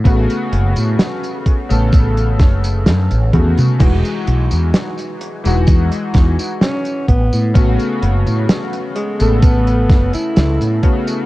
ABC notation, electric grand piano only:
X:1
M:4/4
L:1/16
Q:1/4=64
K:Alyd
V:1 name="Electric grand piano"
[C,A,B,F]6- [C,A,B,F] [C,A,B,A]6- [C,A,B,A] [C,A,B,F]2 | [E,G,DF]6- [E,G,DF] [E,G,DF]6- [E,G,DF] z2 | [C,A,B,F]6- [C,A,B,F] [C,A,B,A]6- [C,A,B,A] [C,A,B,F]2 |]